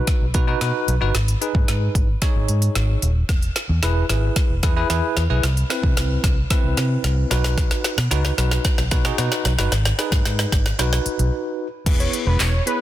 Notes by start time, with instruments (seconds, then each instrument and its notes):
Already playing: tine electric piano D#4 F#4 B4
0.07 kick, snare, closed hi-hat
0.21 fingered electric bass B1
0.34 fingered electric bass B2, tine electric piano D#4 F#4 B4, kick, closed hi-hat
0.47 tine electric piano D#4 F#4 B4
0.61 fingered electric bass B2, tine electric piano D#4 F#4 B4, snare, closed hi-hat
0.88 fingered electric bass B1, closed hi-hat
1.01 fingered electric bass G1, tine electric piano D#4 F#4 B4
1.15 fingered electric bass G#1, snare, closed hi-hat
1.28 closed hi-hat
1.41 tine electric piano D#4 G#4 B4, closed hi-hat
1.55 fingered electric bass G#2, kick
1.68 fingered electric bass G#2, snare, closed hi-hat
1.95 fingered electric bass G#1, kick, closed hi-hat
2.22 tine electric piano D#4 G#4 C#5, kick, snare, closed hi-hat
2.35 fingered electric bass G#1
2.48 fingered electric bass G#2, closed hi-hat
2.62 closed hi-hat
2.75 fingered electric bass G#1, snare, closed hi-hat
3.02 fingered electric bass D#1, closed hi-hat
3.29 fingered electric bass E1, kick, snare, closed hi-hat
3.42 closed hi-hat
3.56 snare, closed hi-hat
3.69 fingered electric bass E2
3.83 fingered electric bass E1, tine electric piano E4 G#4 B4, snare, closed hi-hat
4.09 fingered electric bass G#1, tine electric piano E4 G#4 B4, snare, closed hi-hat
4.36 kick, snare, closed hi-hat
4.50 fingered electric bass E1
4.63 fingered electric bass E2, tine electric piano E4 G#4 B4, kick, snare, closed hi-hat
4.76 tine electric piano E4 G#4 B4
4.90 fingered electric bass E2, tine electric piano E4 G#4 B4, snare, closed hi-hat
5.17 fingered electric bass E2, snare, closed hi-hat
5.30 fingered electric bass B1, tine electric piano E4 G#4 B4
5.43 fingered electric bass C2, snare, closed hi-hat
5.57 closed hi-hat
5.70 tine electric piano C4 E4 B4, snare, closed hi-hat
5.83 fingered electric bass C3, kick
5.97 fingered electric bass C2, snare, closed hi-hat
6.24 fingered electric bass C2, kick, snare, closed hi-hat
6.50 tine electric piano C4 E4 B4, kick, snare, closed hi-hat
6.64 fingered electric bass C2
6.77 fingered electric bass C3, snare, closed hi-hat
7.04 fingered electric bass C2, snare, closed hi-hat
7.31 fingered electric bass B1, tine electric piano D#4 F#4 B4, snare, closed hi-hat
7.44 snare
7.58 kick, snare, closed hi-hat
7.71 snare, closed hi-hat
7.84 snare, closed hi-hat
7.98 fingered electric bass B2, snare
8.11 fingered electric bass C#2, tine electric piano D#4 F#4 B4, snare, closed hi-hat
8.25 snare
8.38 fingered electric bass B1, tine electric piano D#4 F#4 B4, snare, closed hi-hat
8.51 snare
8.65 kick, snare, closed hi-hat
8.78 fingered electric bass B1, snare
8.91 fingered electric bass B2, tine electric piano D#4 F#4 B4, kick, snare, closed hi-hat
9.05 tine electric piano D#4 F#4 G#4, snare
9.18 fingered electric bass B2, tine electric piano D#4 F#4 B4, snare, closed hi-hat
9.32 snare
9.45 fingered electric bass B1, snare, closed hi-hat
9.58 fingered electric bass G1, tine electric piano D#4 F#4 B4, snare
9.72 fingered electric bass G#1, snare, closed hi-hat
9.85 snare, closed hi-hat
9.98 tine electric piano D#4 G#4 B4, snare, closed hi-hat
10.12 fingered electric bass G#2, kick, snare
10.25 fingered electric bass G#2, snare, closed hi-hat
10.39 snare
10.52 fingered electric bass G#1, kick, snare, closed hi-hat
10.66 snare
10.79 fingered electric bass B1, tine electric piano D#4 F#4 B4, snare, closed hi-hat
10.93 snare
11.06 muted fingered electric bass stroke, closed hi-hat
11.19 fingered electric bass B1, closed hi-hat
11.86 fingered electric bass E1, tine electric piano B3 E4 G#4 B4, kick, closed hi-hat, crash
12.00 analog synth lead C#5, closed hi-hat
12.13 closed hi-hat
12.26 fingered electric bass E1, analog synth lead B4
12.40 fingered electric bass E1, analog synth lead C#5, snare, clap, closed hi-hat
12.66 tine electric piano B3 E4 G#4 C#5, analog synth lead B4, closed hi-hat